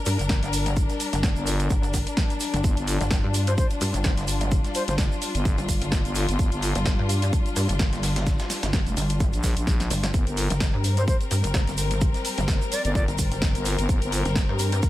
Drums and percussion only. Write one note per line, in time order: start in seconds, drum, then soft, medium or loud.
0.06 closed hi-hat medium
0.06 open hi-hat loud
0.06 shaker medium
0.19 closed hi-hat medium
0.19 shaker soft
0.29 kick loud
0.29 snare loud
0.29 closed hi-hat medium
0.29 shaker soft
0.43 snare medium
0.43 closed hi-hat soft
0.43 shaker soft
0.53 closed hi-hat medium
0.53 open hi-hat loud
0.53 shaker loud
0.66 closed hi-hat medium
0.66 shaker soft
0.76 kick loud
0.76 closed hi-hat medium
0.76 shaker medium
0.90 snare soft
0.90 closed hi-hat soft
0.90 shaker soft
1.00 closed hi-hat medium
1.00 open hi-hat loud
1.00 shaker loud
1.13 snare soft
1.13 closed hi-hat medium
1.13 shaker soft
1.23 kick loud
1.23 snare loud
1.23 closed hi-hat medium
1.23 shaker medium
1.36 shaker soft
1.47 closed hi-hat medium
1.47 open hi-hat loud
1.47 shaker medium
1.59 closed hi-hat medium
1.59 shaker soft
1.70 kick loud
1.70 closed hi-hat medium
1.70 shaker medium
1.83 closed hi-hat soft
1.83 shaker soft
1.94 kick medium
1.94 closed hi-hat medium
1.94 open hi-hat loud
1.94 shaker medium
2.07 closed hi-hat medium
2.07 shaker soft
2.17 kick loud
2.17 snare loud
2.17 closed hi-hat medium
2.17 shaker medium
2.30 closed hi-hat soft
2.30 shaker soft
2.40 snare soft
2.40 closed hi-hat medium
2.40 open hi-hat loud
2.40 shaker loud
2.54 closed hi-hat medium
2.54 shaker soft
2.64 kick loud
2.64 closed hi-hat medium
2.64 shaker medium
2.77 closed hi-hat soft
2.77 shaker soft
2.88 closed hi-hat medium
2.88 open hi-hat loud
2.88 shaker medium
3.01 snare soft
3.01 closed hi-hat medium
3.01 shaker soft
3.11 kick loud
3.11 snare loud
3.11 closed hi-hat medium
3.11 shaker medium
3.34 closed hi-hat medium
3.34 open hi-hat loud
3.34 shaker medium
3.47 closed hi-hat medium
3.47 shaker soft
3.58 kick loud
3.58 closed hi-hat medium
3.58 shaker medium
3.70 closed hi-hat soft
3.70 shaker soft
3.81 closed hi-hat medium
3.81 open hi-hat loud
3.81 shaker loud
3.94 closed hi-hat medium
3.94 shaker soft
4.04 kick loud
4.04 snare loud
4.04 closed hi-hat medium
4.04 shaker soft
4.17 snare medium
4.17 closed hi-hat soft
4.17 shaker soft
4.28 closed hi-hat medium
4.28 open hi-hat loud
4.28 shaker medium
4.41 closed hi-hat medium
4.41 shaker soft
4.51 kick loud
4.51 closed hi-hat medium
4.51 shaker medium
4.64 snare soft
4.64 closed hi-hat medium
4.64 shaker soft
4.75 closed hi-hat medium
4.75 open hi-hat loud
4.75 shaker medium
4.88 snare soft
4.88 closed hi-hat medium
4.88 shaker soft
4.98 kick loud
4.98 snare loud
4.98 closed hi-hat medium
4.98 shaker medium
5.12 shaker soft
5.22 closed hi-hat medium
5.22 open hi-hat loud
5.22 shaker medium
5.35 closed hi-hat medium
5.35 shaker soft
5.45 kick loud
5.45 closed hi-hat medium
5.45 shaker soft
5.58 closed hi-hat soft
5.58 shaker soft
5.69 kick medium
5.69 closed hi-hat medium
5.69 open hi-hat loud
5.69 shaker loud
5.82 closed hi-hat medium
5.82 shaker soft
5.92 kick loud
5.92 snare loud
5.92 closed hi-hat medium
5.92 shaker medium
6.05 closed hi-hat soft
6.05 shaker soft
6.15 snare soft
6.15 closed hi-hat medium
6.15 open hi-hat loud
6.15 shaker medium
6.29 closed hi-hat medium
6.29 shaker soft
6.39 kick loud
6.39 closed hi-hat medium
6.39 shaker medium
6.52 closed hi-hat medium
6.52 shaker soft
6.62 closed hi-hat medium
6.62 open hi-hat loud
6.62 shaker medium
6.75 snare soft
6.75 closed hi-hat medium
6.75 shaker soft
6.86 kick loud
6.86 snare loud
6.86 closed hi-hat medium
6.86 shaker medium
7.09 closed hi-hat medium
7.09 open hi-hat loud
7.09 shaker loud
7.22 closed hi-hat medium
7.22 shaker soft
7.33 kick loud
7.33 closed hi-hat medium
7.33 shaker soft
7.46 closed hi-hat soft
7.46 shaker soft
7.56 closed hi-hat medium
7.56 open hi-hat loud
7.56 shaker loud
7.69 closed hi-hat medium
7.69 shaker soft
7.79 kick loud
7.79 snare loud
7.79 closed hi-hat medium
7.79 shaker soft
7.93 snare medium
7.93 closed hi-hat medium
7.93 shaker soft
8.03 snare loud
8.03 closed hi-hat medium
8.03 open hi-hat loud
8.03 shaker medium
8.16 snare loud
8.16 closed hi-hat medium
8.16 shaker soft
8.27 kick loud
8.27 snare loud
8.27 closed hi-hat medium
8.27 shaker medium
8.39 snare loud
8.39 closed hi-hat medium
8.39 shaker soft
8.50 snare soft
8.50 snare loud
8.50 closed hi-hat medium
8.50 open hi-hat loud
8.50 shaker medium
8.63 snare loud
8.63 closed hi-hat medium
8.63 shaker soft
8.73 kick loud
8.73 snare loud
8.73 closed hi-hat medium
8.73 shaker medium
8.87 closed hi-hat soft
8.87 shaker soft
8.97 closed hi-hat medium
8.97 open hi-hat loud
8.97 shaker medium
9.09 closed hi-hat medium
9.09 shaker soft
9.20 kick loud
9.20 closed hi-hat medium
9.20 shaker soft
9.33 closed hi-hat soft
9.33 shaker soft
9.43 kick medium
9.43 snare loud
9.43 closed hi-hat medium
9.43 open hi-hat loud
9.43 shaker medium
9.57 closed hi-hat medium
9.57 shaker soft
9.67 kick loud
9.67 snare medium
9.67 closed hi-hat medium
9.67 shaker medium
9.80 snare medium
9.80 closed hi-hat medium
9.80 shaker soft
9.90 snare soft
9.90 closed hi-hat medium
9.90 open hi-hat loud
9.90 shaker loud
10.04 snare medium
10.04 closed hi-hat medium
10.04 shaker soft
10.14 kick loud
10.14 closed hi-hat medium
10.14 shaker medium
10.27 closed hi-hat medium
10.27 shaker soft
10.37 closed hi-hat medium
10.37 open hi-hat loud
10.37 shaker medium
10.50 snare soft
10.50 closed hi-hat medium
10.50 shaker soft
10.60 kick loud
10.60 snare loud
10.60 closed hi-hat medium
10.60 shaker soft
10.84 closed hi-hat medium
10.84 open hi-hat loud
10.84 shaker medium
10.97 closed hi-hat medium
10.97 shaker soft
11.08 kick loud
11.08 closed hi-hat medium
11.08 shaker medium
11.21 closed hi-hat soft
11.21 shaker soft
11.31 closed hi-hat medium
11.31 open hi-hat loud
11.31 shaker medium
11.44 closed hi-hat medium
11.44 shaker soft
11.54 kick loud
11.54 snare loud
11.54 closed hi-hat medium
11.54 shaker medium
11.67 snare medium
11.67 closed hi-hat medium
11.67 shaker soft
11.78 closed hi-hat medium
11.78 open hi-hat loud
11.78 shaker loud
11.91 closed hi-hat medium
11.91 shaker soft
12.01 kick loud
12.01 closed hi-hat medium
12.01 shaker medium
12.14 snare soft
12.14 closed hi-hat medium
12.14 shaker soft
12.25 closed hi-hat medium
12.25 open hi-hat loud
12.25 shaker loud
12.38 snare soft
12.38 closed hi-hat medium
12.38 shaker soft
12.48 kick loud
12.48 snare loud
12.48 closed hi-hat medium
12.48 shaker medium
12.62 shaker soft
12.72 closed hi-hat medium
12.72 open hi-hat loud
12.72 shaker loud
12.85 closed hi-hat medium
12.85 shaker soft
12.95 kick loud
12.95 closed hi-hat medium
12.95 shaker medium
13.08 closed hi-hat soft
13.08 shaker soft
13.18 kick medium
13.18 closed hi-hat medium
13.18 open hi-hat loud
13.18 shaker loud
13.32 closed hi-hat medium
13.32 shaker soft
13.42 kick loud
13.42 snare loud
13.42 closed hi-hat medium
13.42 shaker medium
13.55 closed hi-hat medium
13.55 closed hi-hat soft
13.55 shaker soft
13.65 snare soft
13.65 closed hi-hat medium
13.65 open hi-hat loud
13.65 shaker medium
13.79 closed hi-hat medium
13.79 shaker soft
13.89 kick loud
13.89 closed hi-hat medium
13.89 shaker medium
14.02 closed hi-hat medium
14.02 shaker soft
14.12 closed hi-hat medium
14.12 open hi-hat loud
14.12 shaker medium
14.25 snare soft
14.25 closed hi-hat medium
14.25 shaker soft
14.36 kick loud
14.36 snare loud
14.36 closed hi-hat medium
14.36 shaker medium
14.59 closed hi-hat medium
14.59 open hi-hat loud
14.59 shaker medium
14.72 closed hi-hat medium
14.72 shaker soft
14.83 kick loud
14.83 closed hi-hat medium
14.83 shaker medium